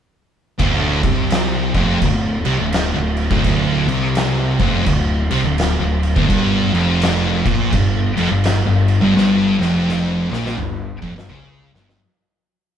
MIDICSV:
0, 0, Header, 1, 4, 480
1, 0, Start_track
1, 0, Key_signature, -1, "minor"
1, 0, Tempo, 712589
1, 399, Time_signature, 4, 2, 24, 8
1, 8606, End_track
2, 0, Start_track
2, 0, Title_t, "Distorted electric guitar"
2, 0, Program_c, 0, 30
2, 397, Note_on_c, 0, 38, 95
2, 686, Note_off_c, 0, 38, 0
2, 698, Note_on_c, 0, 48, 90
2, 1168, Note_off_c, 0, 48, 0
2, 1177, Note_on_c, 0, 41, 102
2, 1354, Note_off_c, 0, 41, 0
2, 1362, Note_on_c, 0, 38, 80
2, 1598, Note_off_c, 0, 38, 0
2, 1657, Note_on_c, 0, 48, 110
2, 1742, Note_off_c, 0, 48, 0
2, 1744, Note_on_c, 0, 38, 69
2, 1927, Note_off_c, 0, 38, 0
2, 1979, Note_on_c, 0, 38, 77
2, 2187, Note_off_c, 0, 38, 0
2, 2225, Note_on_c, 0, 38, 105
2, 2305, Note_off_c, 0, 38, 0
2, 2313, Note_on_c, 0, 38, 103
2, 2605, Note_off_c, 0, 38, 0
2, 2609, Note_on_c, 0, 48, 94
2, 3085, Note_off_c, 0, 48, 0
2, 3093, Note_on_c, 0, 41, 106
2, 3270, Note_off_c, 0, 41, 0
2, 3273, Note_on_c, 0, 38, 80
2, 3515, Note_off_c, 0, 38, 0
2, 3574, Note_on_c, 0, 48, 108
2, 3662, Note_off_c, 0, 48, 0
2, 3664, Note_on_c, 0, 38, 78
2, 3849, Note_off_c, 0, 38, 0
2, 3907, Note_on_c, 0, 38, 77
2, 4113, Note_off_c, 0, 38, 0
2, 4146, Note_on_c, 0, 38, 103
2, 4232, Note_off_c, 0, 38, 0
2, 4234, Note_on_c, 0, 43, 100
2, 4528, Note_off_c, 0, 43, 0
2, 4531, Note_on_c, 0, 41, 86
2, 5009, Note_off_c, 0, 41, 0
2, 5016, Note_on_c, 0, 46, 105
2, 5197, Note_off_c, 0, 46, 0
2, 5201, Note_on_c, 0, 43, 73
2, 5442, Note_off_c, 0, 43, 0
2, 5499, Note_on_c, 0, 41, 115
2, 5588, Note_off_c, 0, 41, 0
2, 5595, Note_on_c, 0, 43, 73
2, 5776, Note_off_c, 0, 43, 0
2, 5836, Note_on_c, 0, 43, 78
2, 6040, Note_off_c, 0, 43, 0
2, 6082, Note_on_c, 0, 43, 102
2, 6165, Note_off_c, 0, 43, 0
2, 6173, Note_on_c, 0, 43, 96
2, 6459, Note_off_c, 0, 43, 0
2, 6467, Note_on_c, 0, 41, 104
2, 6937, Note_off_c, 0, 41, 0
2, 6947, Note_on_c, 0, 46, 104
2, 7123, Note_off_c, 0, 46, 0
2, 7126, Note_on_c, 0, 43, 75
2, 7364, Note_off_c, 0, 43, 0
2, 7425, Note_on_c, 0, 41, 115
2, 7510, Note_off_c, 0, 41, 0
2, 7517, Note_on_c, 0, 43, 77
2, 7607, Note_off_c, 0, 43, 0
2, 7607, Note_on_c, 0, 49, 105
2, 7894, Note_off_c, 0, 49, 0
2, 7905, Note_on_c, 0, 43, 103
2, 8081, Note_off_c, 0, 43, 0
2, 8606, End_track
3, 0, Start_track
3, 0, Title_t, "Picked electric bass"
3, 0, Program_c, 1, 34
3, 400, Note_on_c, 1, 26, 79
3, 675, Note_off_c, 1, 26, 0
3, 695, Note_on_c, 1, 36, 100
3, 1148, Note_off_c, 1, 36, 0
3, 1174, Note_on_c, 1, 29, 97
3, 1345, Note_off_c, 1, 29, 0
3, 1356, Note_on_c, 1, 26, 85
3, 1634, Note_off_c, 1, 26, 0
3, 1656, Note_on_c, 1, 36, 88
3, 1741, Note_off_c, 1, 36, 0
3, 1744, Note_on_c, 1, 26, 82
3, 1969, Note_off_c, 1, 26, 0
3, 1982, Note_on_c, 1, 26, 75
3, 2208, Note_off_c, 1, 26, 0
3, 2226, Note_on_c, 1, 26, 92
3, 2312, Note_off_c, 1, 26, 0
3, 2319, Note_on_c, 1, 26, 92
3, 2596, Note_off_c, 1, 26, 0
3, 2605, Note_on_c, 1, 36, 86
3, 3065, Note_off_c, 1, 36, 0
3, 3095, Note_on_c, 1, 29, 100
3, 3267, Note_off_c, 1, 29, 0
3, 3279, Note_on_c, 1, 26, 88
3, 3557, Note_off_c, 1, 26, 0
3, 3570, Note_on_c, 1, 36, 88
3, 3660, Note_off_c, 1, 36, 0
3, 3664, Note_on_c, 1, 26, 91
3, 3891, Note_off_c, 1, 26, 0
3, 3904, Note_on_c, 1, 26, 85
3, 4131, Note_off_c, 1, 26, 0
3, 4151, Note_on_c, 1, 26, 97
3, 4237, Note_off_c, 1, 26, 0
3, 4241, Note_on_c, 1, 31, 84
3, 4519, Note_off_c, 1, 31, 0
3, 4532, Note_on_c, 1, 29, 93
3, 4991, Note_off_c, 1, 29, 0
3, 5021, Note_on_c, 1, 34, 88
3, 5192, Note_off_c, 1, 34, 0
3, 5202, Note_on_c, 1, 31, 83
3, 5481, Note_off_c, 1, 31, 0
3, 5493, Note_on_c, 1, 29, 82
3, 5583, Note_off_c, 1, 29, 0
3, 5586, Note_on_c, 1, 31, 86
3, 5814, Note_off_c, 1, 31, 0
3, 5828, Note_on_c, 1, 31, 75
3, 6055, Note_off_c, 1, 31, 0
3, 6070, Note_on_c, 1, 31, 102
3, 6156, Note_off_c, 1, 31, 0
3, 6160, Note_on_c, 1, 31, 82
3, 6440, Note_off_c, 1, 31, 0
3, 6465, Note_on_c, 1, 29, 84
3, 6918, Note_off_c, 1, 29, 0
3, 6941, Note_on_c, 1, 34, 98
3, 7112, Note_off_c, 1, 34, 0
3, 7129, Note_on_c, 1, 31, 78
3, 7404, Note_off_c, 1, 31, 0
3, 7425, Note_on_c, 1, 29, 85
3, 7509, Note_off_c, 1, 29, 0
3, 7513, Note_on_c, 1, 31, 86
3, 7599, Note_off_c, 1, 31, 0
3, 7605, Note_on_c, 1, 37, 97
3, 7882, Note_off_c, 1, 37, 0
3, 7905, Note_on_c, 1, 31, 93
3, 8073, Note_off_c, 1, 31, 0
3, 8606, End_track
4, 0, Start_track
4, 0, Title_t, "Drums"
4, 398, Note_on_c, 9, 49, 78
4, 401, Note_on_c, 9, 36, 105
4, 465, Note_off_c, 9, 49, 0
4, 468, Note_off_c, 9, 36, 0
4, 694, Note_on_c, 9, 49, 67
4, 697, Note_on_c, 9, 36, 110
4, 762, Note_off_c, 9, 49, 0
4, 764, Note_off_c, 9, 36, 0
4, 879, Note_on_c, 9, 49, 77
4, 892, Note_on_c, 9, 38, 117
4, 946, Note_off_c, 9, 49, 0
4, 959, Note_off_c, 9, 38, 0
4, 1175, Note_on_c, 9, 49, 56
4, 1176, Note_on_c, 9, 36, 89
4, 1243, Note_off_c, 9, 36, 0
4, 1243, Note_off_c, 9, 49, 0
4, 1359, Note_on_c, 9, 36, 97
4, 1359, Note_on_c, 9, 49, 88
4, 1426, Note_off_c, 9, 36, 0
4, 1426, Note_off_c, 9, 49, 0
4, 1650, Note_on_c, 9, 49, 73
4, 1717, Note_off_c, 9, 49, 0
4, 1835, Note_on_c, 9, 49, 88
4, 1848, Note_on_c, 9, 38, 112
4, 1903, Note_off_c, 9, 49, 0
4, 1916, Note_off_c, 9, 38, 0
4, 2133, Note_on_c, 9, 49, 66
4, 2200, Note_off_c, 9, 49, 0
4, 2228, Note_on_c, 9, 36, 113
4, 2295, Note_off_c, 9, 36, 0
4, 2320, Note_on_c, 9, 36, 106
4, 2320, Note_on_c, 9, 49, 77
4, 2387, Note_off_c, 9, 36, 0
4, 2388, Note_off_c, 9, 49, 0
4, 2616, Note_on_c, 9, 49, 66
4, 2684, Note_off_c, 9, 49, 0
4, 2797, Note_on_c, 9, 49, 85
4, 2809, Note_on_c, 9, 38, 113
4, 2864, Note_off_c, 9, 49, 0
4, 2877, Note_off_c, 9, 38, 0
4, 3095, Note_on_c, 9, 49, 54
4, 3096, Note_on_c, 9, 36, 99
4, 3162, Note_off_c, 9, 49, 0
4, 3164, Note_off_c, 9, 36, 0
4, 3275, Note_on_c, 9, 49, 85
4, 3280, Note_on_c, 9, 36, 89
4, 3343, Note_off_c, 9, 49, 0
4, 3347, Note_off_c, 9, 36, 0
4, 3574, Note_on_c, 9, 49, 63
4, 3642, Note_off_c, 9, 49, 0
4, 3758, Note_on_c, 9, 49, 80
4, 3771, Note_on_c, 9, 38, 100
4, 3825, Note_off_c, 9, 49, 0
4, 3838, Note_off_c, 9, 38, 0
4, 4062, Note_on_c, 9, 49, 58
4, 4130, Note_off_c, 9, 49, 0
4, 4151, Note_on_c, 9, 36, 106
4, 4219, Note_off_c, 9, 36, 0
4, 4243, Note_on_c, 9, 36, 108
4, 4245, Note_on_c, 9, 49, 81
4, 4310, Note_off_c, 9, 36, 0
4, 4312, Note_off_c, 9, 49, 0
4, 4544, Note_on_c, 9, 49, 62
4, 4611, Note_off_c, 9, 49, 0
4, 4726, Note_on_c, 9, 49, 81
4, 4739, Note_on_c, 9, 38, 108
4, 4793, Note_off_c, 9, 49, 0
4, 4806, Note_off_c, 9, 38, 0
4, 5023, Note_on_c, 9, 36, 96
4, 5026, Note_on_c, 9, 49, 61
4, 5090, Note_off_c, 9, 36, 0
4, 5094, Note_off_c, 9, 49, 0
4, 5203, Note_on_c, 9, 49, 84
4, 5206, Note_on_c, 9, 36, 97
4, 5271, Note_off_c, 9, 49, 0
4, 5273, Note_off_c, 9, 36, 0
4, 5506, Note_on_c, 9, 49, 63
4, 5573, Note_off_c, 9, 49, 0
4, 5683, Note_on_c, 9, 49, 80
4, 5696, Note_on_c, 9, 38, 103
4, 5751, Note_off_c, 9, 49, 0
4, 5763, Note_off_c, 9, 38, 0
4, 5982, Note_on_c, 9, 49, 61
4, 6050, Note_off_c, 9, 49, 0
4, 6178, Note_on_c, 9, 38, 69
4, 6245, Note_off_c, 9, 38, 0
4, 6475, Note_on_c, 9, 38, 72
4, 6543, Note_off_c, 9, 38, 0
4, 6661, Note_on_c, 9, 38, 78
4, 6729, Note_off_c, 9, 38, 0
4, 6958, Note_on_c, 9, 38, 82
4, 7026, Note_off_c, 9, 38, 0
4, 7048, Note_on_c, 9, 38, 76
4, 7115, Note_off_c, 9, 38, 0
4, 7127, Note_on_c, 9, 45, 86
4, 7194, Note_off_c, 9, 45, 0
4, 7425, Note_on_c, 9, 36, 91
4, 7493, Note_off_c, 9, 36, 0
4, 7531, Note_on_c, 9, 38, 92
4, 7598, Note_off_c, 9, 38, 0
4, 7609, Note_on_c, 9, 43, 90
4, 7677, Note_off_c, 9, 43, 0
4, 7918, Note_on_c, 9, 38, 100
4, 7986, Note_off_c, 9, 38, 0
4, 8011, Note_on_c, 9, 38, 101
4, 8078, Note_off_c, 9, 38, 0
4, 8606, End_track
0, 0, End_of_file